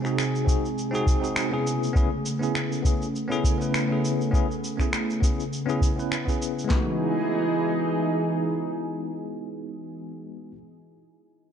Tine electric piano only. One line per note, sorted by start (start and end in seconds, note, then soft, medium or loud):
0.02 0.43 C4 medium
0.02 0.44 D#4 medium
0.02 0.44 F#4 medium
0.06 0.45 G#4 medium
0.45 0.66 C4 medium
0.45 0.67 D#4 medium
0.45 0.68 F#4 medium
0.49 0.68 G#4 medium
0.91 1.18 C4 medium
0.91 1.19 D#4 medium
0.91 1.20 F#4 medium
0.95 1.20 G#4 loud
1.20 1.47 C4 medium
1.20 1.48 D#4 medium
1.20 1.48 F#4 medium
1.20 1.49 G#4 medium
1.50 1.91 B3 medium
1.50 1.92 C#4 medium
1.50 1.92 E4 medium
1.50 1.93 G#4 medium
1.93 2.08 B3 medium
1.93 2.09 C#4 medium
1.93 2.09 E4 medium
1.93 2.10 G#4 medium
2.39 2.80 B3 medium
2.39 2.81 C#4 medium
2.39 2.81 E4 medium
2.39 2.82 G#4 medium
2.82 3.04 B3 medium
2.82 3.05 C#4 medium
2.82 3.06 E4 medium
2.86 3.06 G#4 medium
3.28 3.55 B3 medium
3.28 3.56 C#4 medium
3.28 3.57 E4 medium
3.32 3.58 G#4 loud
3.58 3.85 B3 medium
3.58 3.86 C#4 medium
3.58 3.86 E4 medium
3.58 3.87 B4 medium
3.88 4.29 B3 medium
3.88 4.30 C#4 medium
3.88 4.30 E4 medium
3.92 4.31 G#4 medium
4.31 4.45 B3 medium
4.31 4.46 C#4 medium
4.31 4.47 E4 medium
4.31 4.47 G#4 medium
4.77 5.18 B3 medium
4.77 5.19 C#4 medium
4.77 5.19 E4 medium
4.77 5.20 G#4 medium
5.20 5.42 B3 medium
5.20 5.42 C#4 medium
5.20 5.43 E4 medium
5.20 5.44 G#4 medium
5.66 5.93 B3 medium
5.66 5.94 C#4 medium
5.66 5.95 E4 medium
5.66 5.95 G#4 medium
5.96 6.23 B3 medium
5.96 6.23 C#4 medium
5.96 6.24 E4 medium
5.96 6.24 B4 medium
6.25 6.66 B3 medium
6.25 6.67 C#4 medium
6.25 6.68 E4 medium
6.25 6.68 G#4 medium
6.64 10.51 G#3 medium
6.64 10.53 B3 medium
6.72 10.55 D#4 medium
6.72 10.57 F#4 medium